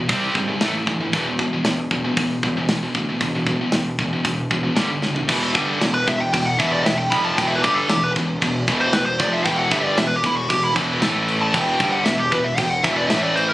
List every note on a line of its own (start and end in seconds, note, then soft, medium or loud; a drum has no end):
0.00 0.10 E2 medium
0.09 0.25 C2 medium
0.09 0.34 C3 medium
0.09 0.35 G3 medium
0.09 0.35 C4 medium
0.09 kick loud
0.09 open hi-hat medium
0.35 0.51 G#1 medium
0.35 0.48 C3 medium
0.35 0.47 G3 medium
0.35 kick medium
0.48 0.62 C3 medium
0.48 0.62 G3 medium
0.61 0.78 A1 medium
0.61 0.74 A2 medium
0.61 0.74 E3 medium
0.61 0.74 A3 loud
0.61 snare loud
0.61 open hi-hat soft
0.75 0.87 A2 medium
0.75 0.87 E3 medium
0.87 1.03 G1 medium
0.87 1.00 A2 medium
0.87 0.99 E3 medium
0.87 kick medium
1.00 1.13 A2 medium
1.00 1.14 E3 medium
1.13 1.45 E1 loud
1.13 1.25 E2 medium
1.13 1.25 B2 medium
1.13 1.26 E3 medium
1.13 kick loud
1.13 open hi-hat medium
1.26 1.38 E2 medium
1.26 1.38 B2 medium
1.39 1.52 E2 medium
1.39 1.52 B2 medium
1.39 kick medium
1.53 1.65 E2 medium
1.53 1.65 B2 medium
1.65 1.82 E1 medium
1.65 1.89 E2 medium
1.65 1.90 B2 medium
1.65 snare loud
1.65 open hi-hat medium
1.91 2.07 E1 medium
1.91 2.04 E2 medium
1.91 2.03 B2 medium
1.91 kick medium
2.04 2.17 E2 medium
2.04 2.17 B2 medium
2.17 2.33 E1 medium
2.17 2.41 E2 medium
2.17 2.42 B2 medium
2.17 kick loud
2.17 open hi-hat medium
2.43 2.60 E1 medium
2.43 2.57 E2 medium
2.43 2.56 B2 medium
2.43 kick medium
2.57 2.69 E2 medium
2.57 2.69 B2 medium
2.69 2.85 E1 loud
2.69 2.82 E2 medium
2.69 2.82 B2 medium
2.69 snare loud
2.69 open hi-hat medium
2.83 2.96 E2 medium
2.83 2.96 B2 medium
2.95 3.11 D2 medium
2.95 3.08 E2 medium
2.95 3.08 B2 medium
2.95 kick medium
3.09 3.21 E2 medium
3.09 3.21 B2 medium
3.21 3.53 E1 loud
3.21 3.34 E2 medium
3.21 3.34 B2 medium
3.21 kick loud
3.21 open hi-hat medium
3.35 3.47 E2 medium
3.35 3.46 B2 medium
3.47 3.60 E2 medium
3.47 3.60 B2 medium
3.47 kick medium
3.61 3.72 E2 medium
3.61 3.73 B2 medium
3.72 3.90 E1 loud
3.72 3.97 E2 medium
3.72 3.97 B2 medium
3.72 snare loud
3.72 open hi-hat medium
3.99 4.15 E1 medium
3.99 4.11 E2 medium
3.99 4.12 B2 medium
3.99 kick medium
4.13 4.24 E2 medium
4.13 4.25 B2 medium
4.25 4.41 E1 medium
4.25 4.49 E2 medium
4.25 4.49 B2 medium
4.25 kick loud
4.25 open hi-hat medium
4.51 4.67 E1 medium
4.51 4.64 E2 medium
4.51 4.64 B2 medium
4.51 kick medium
4.65 4.76 E2 medium
4.65 4.77 B2 medium
4.77 4.94 G1 medium
4.77 4.88 G2 loud
4.77 4.88 D3 loud
4.77 4.89 G3 loud
4.77 snare loud
4.77 open hi-hat soft
4.89 5.02 G2 medium
4.89 5.02 D3 medium
5.02 5.20 F#1 medium
5.02 5.15 G2 medium
5.02 5.15 D3 medium
5.02 snare medium
5.16 5.29 G2 medium
5.16 5.29 D3 medium
5.16 floor tom medium
5.29 5.54 E1 loud
5.29 5.54 E2 medium
5.29 5.55 B2 medium
5.29 5.55 E3 medium
5.29 kick loud
5.29 crash loud
5.29 crash medium
5.54 5.80 G1 medium
5.54 5.81 G2 medium
5.54 5.81 D3 medium
5.54 5.81 G3 medium
5.54 kick loud
5.54 crash medium
5.81 6.06 E1 medium
5.81 6.03 E2 medium
5.81 6.03 B2 medium
5.81 snare loud
5.81 crash medium
5.94 6.07 B4 medium
6.08 6.32 E1 medium
6.08 6.29 E2 medium
6.08 6.29 B2 medium
6.08 6.21 E5 medium
6.08 kick medium
6.08 crash medium
6.20 6.32 G5 medium
6.33 6.58 E1 medium
6.33 6.55 E2 medium
6.33 6.55 B2 medium
6.33 6.46 G5 medium
6.33 kick medium
6.33 crash medium
6.46 6.59 F#5 medium
6.59 6.84 E1 loud
6.59 6.85 E2 loud
6.59 6.86 B2 loud
6.59 6.86 E3 loud
6.59 6.72 E5 medium
6.59 kick loud
6.59 crash medium
6.72 6.85 D5 medium
6.85 7.11 E1 medium
6.85 7.07 E2 medium
6.85 7.08 B2 medium
6.85 6.98 E5 medium
6.85 snare loud
6.85 crash medium
6.97 7.11 G5 medium
7.10 7.37 F1 loud
7.10 7.38 F2 medium
7.10 7.38 C3 medium
7.10 7.38 F3 loud
7.10 7.24 B5 loud
7.10 kick loud
7.10 crash medium
7.24 7.37 A5 loud
7.38 7.63 E1 loud
7.38 7.64 E2 medium
7.38 7.64 B2 medium
7.38 7.64 E3 loud
7.38 7.47 G5 medium
7.38 kick medium
7.38 crash medium
7.47 7.56 E5 medium
7.55 7.64 B4 medium
7.62 7.89 G1 medium
7.62 7.90 G2 medium
7.62 7.90 D3 medium
7.62 7.90 G3 loud
7.62 7.76 G4 medium
7.62 kick loud
7.62 crash medium
7.74 7.89 A4 medium
7.89 8.15 E1 medium
7.89 8.12 E2 medium
7.89 8.12 B2 medium
7.89 8.02 G4 medium
7.89 snare loud
7.89 crash medium
8.04 8.11 B4 medium
8.16 8.40 E1 medium
8.16 8.38 E2 medium
8.16 8.38 B2 medium
8.16 kick medium
8.16 crash soft
8.41 8.67 E1 medium
8.41 8.63 E2 medium
8.41 8.63 B2 medium
8.41 kick medium
8.41 crash medium
8.68 8.93 E1 loud
8.68 8.92 E2 loud
8.68 8.93 B2 loud
8.68 8.94 E3 loud
8.68 kick loud
8.68 crash medium
8.81 8.94 C5 medium
8.93 9.19 E1 medium
8.93 9.15 E2 medium
8.93 9.15 B2 medium
8.93 9.05 B4 medium
8.93 snare loud
8.93 crash medium
9.06 9.19 C5 medium
9.18 9.45 F1 loud
9.18 9.45 F2 medium
9.18 9.45 C3 medium
9.18 9.45 F3 loud
9.18 9.33 D5 medium
9.18 kick loud
9.18 crash medium
9.33 9.46 E5 medium
9.45 9.71 E1 loud
9.45 9.71 E2 medium
9.45 9.71 B2 medium
9.45 9.72 E3 loud
9.45 9.57 G5 loud
9.45 kick loud
9.45 crash medium
9.58 9.71 F#5 medium
9.71 9.96 G1 loud
9.71 9.97 G2 medium
9.71 9.97 D3 medium
9.71 9.98 G3 medium
9.71 9.85 E5 medium
9.71 kick loud
9.71 crash medium
9.85 9.98 D5 medium
9.97 10.23 E1 medium
9.97 10.19 E2 medium
9.97 10.19 B2 medium
9.97 10.07 E5 loud
9.97 snare loud
9.97 crash medium
10.07 10.16 B4 medium
10.16 10.26 G4 medium
10.24 10.48 E1 medium
10.24 10.45 E2 medium
10.24 10.46 B2 medium
10.24 10.36 E4 medium
10.24 kick medium
10.24 crash medium
10.37 10.49 F#4 medium
10.50 10.74 E1 medium
10.50 10.71 E2 medium
10.50 10.72 B2 medium
10.50 10.63 G4 medium
10.50 kick loud
10.50 crash medium
10.64 10.72 E4 medium
10.76 11.00 E1 loud
10.76 11.02 E2 loud
10.76 11.02 B2 loud
10.76 11.02 E3 loud
10.76 kick loud
10.76 crash medium
11.02 11.52 A1 medium
11.02 11.54 A2 medium
11.02 11.54 E3 medium
11.02 11.54 A3 loud
11.02 snare loud
11.02 crash medium
11.28 crash medium
11.42 11.54 A5 medium
11.54 11.79 E1 medium
11.54 11.80 E2 medium
11.54 11.80 B2 medium
11.54 11.80 E3 loud
11.54 11.91 G5 medium
11.54 kick loud
11.54 crash medium
11.80 12.05 G1 medium
11.80 12.05 G2 medium
11.80 12.06 D3 medium
11.80 12.06 G3 medium
11.80 kick loud
11.80 crash medium
11.92 12.04 F#5 medium
12.04 12.31 E1 medium
12.04 12.27 E2 medium
12.04 12.28 B2 medium
12.04 12.18 E5 medium
12.04 snare loud
12.04 crash medium
12.18 12.32 G4 medium
12.31 12.57 E1 medium
12.31 12.54 E2 medium
12.31 12.54 B2 medium
12.31 12.45 B4 medium
12.31 kick medium
12.31 crash medium
12.44 12.58 E5 loud
12.57 12.83 E1 medium
12.57 12.80 E2 medium
12.57 12.80 B2 medium
12.57 12.70 G5 loud
12.57 kick medium
12.57 crash medium
12.70 12.84 F#5 loud
12.83 13.09 E1 medium
12.83 13.10 E2 loud
12.83 13.10 B2 loud
12.83 13.09 E3 loud
12.83 12.97 E5 medium
12.83 kick loud
12.83 crash medium
12.97 13.09 D5 medium
13.09 13.54 A1 loud
13.09 13.54 A2 medium
13.09 13.54 E3 loud
13.09 13.54 A3 loud
13.09 13.23 E5 loud
13.09 snare loud
13.09 crash medium
13.23 13.36 D5 medium
13.36 13.49 C5 medium
13.36 crash medium
13.49 13.54 A#4 medium